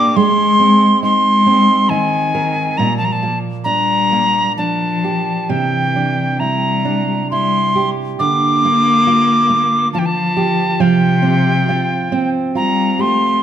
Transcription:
Already playing: A#2 A#3 D4 G4 D6
0.16 G#3 C6
0.59 C4
1.02 G#3 D#4 C6
1.46 C4
1.89 D#3 D#4 G#5
2.35 A#4
2.77 A#2 G3 A#5
2.98 F3 A5
3.05 G3 A#5
3.12 F3 A5
3.23 A#3
3.64 G3 D4 A#5
4.12 A#3
4.58 F3 D4 A5
5.04 G4
5.49 C3 E3 G5
5.96 D4
6.40 G3 E4 A#5
6.85 D4
7.31 G3 E4 C6
7.75 G4
8.19 D3 A#3 D6
8.65 A#3
9.07 F4
9.50 A#3
9.93 F3 F4 A5
9.99 E3 G5
10.06 F3 A5
10.37 G4
10.80 C3 F3 G5
11.22 C4
11.69 F4
12.12 C4
12.55 G3 F4 A#5
12.99 A3 G4 C6

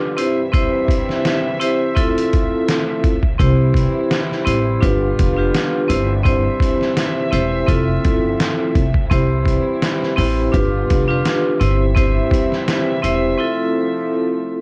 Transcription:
Already playing: D3 G3 B3 D4 F4 G4 B4
0.17 G2 C3 E3 G3 C4 E4 G4 C5 E5, closed hi-hat
0.52 C4 E4 G4 C5, kick, closed hi-hat
0.88 kick, closed hi-hat
1.09 snare
1.25 snare, closed hi-hat
1.59 C4 E4 G4 C5, closed hi-hat
1.95 F3 A3 C4 E4 F4 A4, kick, closed hi-hat
2.18 closed hi-hat
2.33 kick, closed hi-hat
2.68 snare, closed hi-hat
3.04 kick, closed hi-hat
3.23 kick
3.38 C2 C3 E3 G3 C4 E4 G4 C5, kick, closed hi-hat
3.74 kick, closed hi-hat
4.11 snare, closed hi-hat
4.31 snare
4.45 A1 C4 E4 G4 C5, closed hi-hat
4.80 G1 D3 B3 D4 F4 G4 B4, kick, closed hi-hat
5.19 F1, kick, closed hi-hat
5.37 D4 F4 G4 B4
5.54 snare, closed hi-hat
5.88 G1 G2 C3 E3 C4 E4 G4 C5 E5, closed hi-hat
6.23 C4 E4 G4 C5, kick, closed hi-hat
6.60 kick, closed hi-hat
6.81 snare
6.97 snare, closed hi-hat
7.31 E1 C4 E4 G4 C5, closed hi-hat
7.66 F1 F3 A3 C4 E4 F4 A4, kick, closed hi-hat
8.05 G1, kick, closed hi-hat
8.40 snare, closed hi-hat
8.75 F1, kick, closed hi-hat
8.94 kick
9.10 C2 E3 G3 C4 E4 G4 C5, kick, closed hi-hat
9.46 kick, closed hi-hat
9.82 snare, closed hi-hat
10.03 snare
10.16 A1 C4 E4 G4 C5, open hi-hat
10.52 G1 D3 G3 B3 D4 F4 G4 B4, kick, closed hi-hat
10.90 F1, kick, closed hi-hat
11.08 D4 F4 G4 B4
11.26 snare, closed hi-hat
11.60 G1 G2 C3 E3 G3 C4 E4 G4 C5 E5, closed hi-hat
11.95 C4 E4 G4 C5, kick, closed hi-hat
12.31 kick, closed hi-hat
12.52 snare
12.68 snare, closed hi-hat
13.02 E1 C4 E4 G4 C5, closed hi-hat
13.38 F3 A3 C4 E4 F4 A4

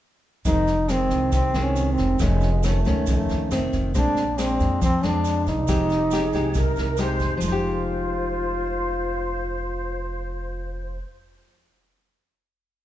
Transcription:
0.45 F1 F2 D#3 G#3 C4 D#4, kick, snare, shaker
0.67 snare, shaker
0.89 D#3 G#3 C4, cross-stick, snare, shaker
1.10 C2, kick, snare, shaker
1.32 C3 C4, kick, snare, shaker
1.54 C2 D#3 G#3 C4, cross-stick, snare, shaker
1.62 C#4
1.76 snare, shaker
1.93 C4
1.98 F1, kick, snare, shaker
2.19 F1 F2 D#3 G#3 A3 C#4, kick, cross-stick, snare, shaker
2.41 snare, shaker
2.63 D#3 A3 C#4, cross-stick, snare, shaker
2.85 C#2 D#3 A3 C#4, kick, snare, shaker
3.06 F2 A3, kick, snare, shaker
3.29 C#2, snare, shaker
3.51 F1 D#3 A3 C4, cross-stick, snare, shaker
3.73 F1, kick, snare, shaker
3.95 A#1 A#2 G#3 C4 D4, kick, snare, shaker
4.17 snare, shaker
4.38 G#3 C4 D4, cross-stick, snare, shaker
4.60 F2, kick, snare, shaker
4.81 F3 C4, kick, snare, shaker
5.03 F2 G#3 C4 D4, cross-stick, snare, shaker
5.25 snare, shaker
5.46 C2 D#4, kick, snare, shaker
5.68 F1 F3 G#3 D#4 G4, kick, cross-stick, snare, shaker
5.90 G4, snare, shaker
6.11 G#3 D#4 G4 G#4, cross-stick, snare, shaker
6.33 C2 G#3 D#4 G4, kick, snare, shaker
6.54 C3 A#4, kick, snare, shaker
6.76 C2, snare, shaker
6.97 G#3 D#4 G4 C5, cross-stick, snare, shaker
7.19 F1, kick, snare, shaker
7.37 F3, shaker
7.41 F1 G#3 F4 C5
7.48 D#4
7.52 G4

